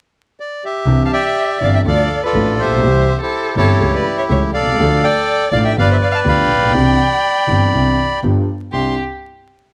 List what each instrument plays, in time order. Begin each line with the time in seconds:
0.40 bandoneon D5
0.64 bandoneon G4 E5
0.86 double bass C2, grand piano C2 C3 E3 C4 D4 G4
1.05 violin F5, bandoneon A5
1.12 bandoneon D5 E5 G5, violin E5
1.61 grand piano G1 G2 E3 C4 D4 G4, double bass G1, violin D5, bandoneon F5
1.74 violin E5, bandoneon G5
1.85 double bass D2, grand piano D2 D3 F3 A3 D4 A4, bandoneon A4 D5 F5, violin D5
2.23 bandoneon F4 A4 D5, violin B4
2.34 double bass A1, grand piano A1 A2 F3 A3 D4 A4
2.58 double bass A#1, bandoneon G4 C5 E5, violin C5
2.64 grand piano A1
2.70 grand piano A#1
2.77 grand piano B1
2.82 grand piano C2 C3 E3 G3 C4 G4, double bass C2
3.21 bandoneon E4 G4 C5, violin A4
3.55 grand piano G1 G2 E3 G3 C4 G4, double bass G1, bandoneon E4 G4 C#5, violin A4
3.80 double bass C#2, grand piano C#2 C#3 E3 A3 C#4 G4
3.94 violin B4, bandoneon D5
4.17 violin C#5, bandoneon E5
4.29 grand piano C#2 C#3 E3 A3 C#4 G4, double bass C#2, violin C#5, bandoneon E5
4.54 double bass C2, bandoneon A4 D5 F5, violin D5
4.61 grand piano B1
4.67 grand piano C2
4.74 grand piano C#2
4.79 double bass D2, grand piano D2 D3 F3 A3 D4 A4
5.03 violin D5, bandoneon D5 G5
5.52 double bass A1, grand piano A1 A2 F3 A3 D4 A4, violin D5, bandoneon F5
5.64 violin E5, bandoneon G5
5.76 grand piano G1 G2 F3 B3 D4 G4, double bass G1, bandoneon B4 D5 F5, violin D5
5.91 violin C5, bandoneon E5
6.02 violin D5, bandoneon F5
6.11 violin F5, bandoneon A5
6.24 grand piano D2 D3 F3 B3 D4 G4, double bass D2, violin G5, bandoneon B5
6.29 bandoneon D5 F5
6.49 double bass A#1
6.55 grand piano A1
6.62 grand piano A#1
6.68 grand piano B1
6.73 grand piano C2 C3 E3 C4 D4 G4, double bass C2
7.47 grand piano G1 G2 E3 C4 D4 G4, double bass G1
7.72 grand piano C2 C3 E3 C4 D4 G4, double bass C2
8.23 double bass G1, grand piano G1 G2 F3 B3 D4 G4
8.72 double bass C2, grand piano C2 C4 D4 E4, violin G4, bandoneon C6